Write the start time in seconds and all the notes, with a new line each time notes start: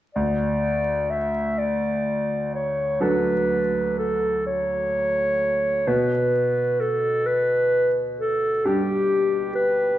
0.15 D2 D5
1.10 E5
1.58 D5
2.55 C#5
3.00 F#3 D4 A4 B4
3.98 A4
4.46 C#5
5.87 B2 B4
6.80 A4
7.26 B4
8.19 A4
8.65 G3 D4 G4
9.55 B4